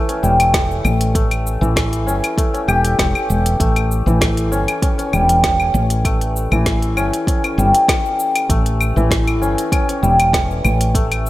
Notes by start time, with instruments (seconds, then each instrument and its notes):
Already playing: santur E3 G3 A3
0.09 santur C#4, closed hi-hat, shaker
0.23 fretless electric bass E1, santur G3, shaker
0.40 closed hi-hat, claves, shaker
0.54 kick, snare, closed hi-hat, shaker
0.71 shaker
0.84 fretless electric bass A1, claves, shaker
1.01 closed hi-hat, shaker
1.15 santur A3, kick, closed hi-hat, shaker
1.31 closed hi-hat, claves, shaker
1.47 shaker
1.61 fretless electric bass A1, santur E3, shaker
1.76 kick, snare, closed hi-hat, claves, shaker
1.93 closed hi-hat, shaker
2.07 fretless electric bass G1, santur C#4, shaker
2.24 closed hi-hat, claves, shaker
2.38 santur A3, kick, closed hi-hat, shaker
2.54 santur C#4, closed hi-hat, shaker
2.68 fretless electric bass E1, santur G4, claves, shaker
2.85 closed hi-hat, shaker
2.99 fretless electric bass E1, kick, snare, closed hi-hat, shaker
3.15 claves, shaker
3.30 fretless electric bass E1, shaker
3.46 closed hi-hat, shaker
3.60 fretless electric bass A1, santur A3, kick, closed hi-hat, shaker
3.76 closed hi-hat, claves, shaker
3.91 shaker
4.06 fretless electric bass A1, santur E3, shaker
4.21 kick, snare, closed hi-hat, claves, shaker
4.37 closed hi-hat, shaker
4.52 fretless electric bass G1, santur C#4, shaker
4.68 closed hi-hat, claves, shaker
4.82 santur C#4, kick, closed hi-hat, shaker
4.98 santur C#4, closed hi-hat, shaker
5.13 fretless electric bass E1, santur G3, claves, shaker
5.29 closed hi-hat, shaker
5.44 kick, snare, closed hi-hat, shaker
5.60 claves, shaker
5.74 fretless electric bass A1, shaker
5.90 closed hi-hat, shaker
6.05 santur A3, kick, closed hi-hat, claves, shaker
6.21 closed hi-hat, shaker
6.36 shaker
6.51 fretless electric bass A1, santur E3, claves, shaker
6.66 kick, snare, closed hi-hat, shaker
6.82 closed hi-hat, shaker
6.97 fretless electric bass G1, santur C#4, claves, shaker
7.13 closed hi-hat, shaker
7.27 santur C#4, kick, closed hi-hat, shaker
7.44 santur C#4, closed hi-hat, claves, shaker
7.58 fretless electric bass G1, santur G3, shaker
7.75 closed hi-hat, shaker
7.88 kick, snare, closed hi-hat, claves, shaker
8.05 shaker
8.20 shaker
8.36 closed hi-hat, claves, shaker
8.49 fretless electric bass A1, santur A3, kick, closed hi-hat, shaker
8.66 closed hi-hat, shaker
8.81 claves, shaker
8.96 fretless electric bass A1, santur E3, shaker
9.11 kick, snare, closed hi-hat, shaker
9.28 closed hi-hat, claves, shaker
9.41 fretless electric bass G1, santur C#4, shaker
9.58 closed hi-hat, shaker
9.72 santur C#4, kick, closed hi-hat, claves, shaker
9.89 santur C#4, closed hi-hat, shaker
10.03 fretless electric bass E1, santur G3, shaker
10.20 closed hi-hat, claves, shaker
10.33 kick, snare, closed hi-hat, shaker
10.51 shaker
10.64 fretless electric bass A1, claves, shaker
10.81 closed hi-hat, shaker
10.95 santur A3, kick, closed hi-hat, shaker
11.12 closed hi-hat, claves, shaker
11.26 shaker